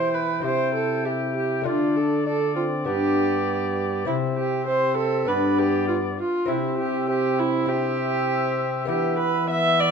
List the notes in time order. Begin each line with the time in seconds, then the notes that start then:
Already playing: B2 E3 E4 G4 C5 G5
0.14 B4
0.40 C3 C4 E4 G4 C5
0.45 E4 G5
0.75 A4
1.05 E4 G4 G5
1.36 G4
1.62 D3 A3 D4 F4
1.66 F4 D5
1.96 A4
2.25 D4 A4 D5
2.56 C4 F4
2.85 G2 B3 D4 G4 D5
4.05 C3 C4 E4 E5
4.37 G4
4.67 C4 C5 E5
4.97 A4
5.25 G2 B3 D4 B4 D5
5.58 G4
5.88 F4
6.19 F4
6.46 C3 C4 E4 E5
6.78 G4
7.08 C4 G4 E5
7.39 E4
7.66 C4 E4 G4 E5
8.85 E3 B3 E4 G4 E5
9.19 B4
9.48 B3 E5
9.80 D5